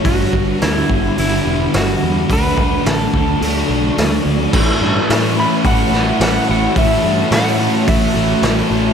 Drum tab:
CC |--------|--------|x-------|--------|
HH |o-o-o-o-|o-o-o-o-|--o-o-o-|o-o-o-o-|
SD |--o---o-|--o---o-|--o--oo-|--o---o-|
BD |oo-o----|oo-o----|o---o---|o---o---|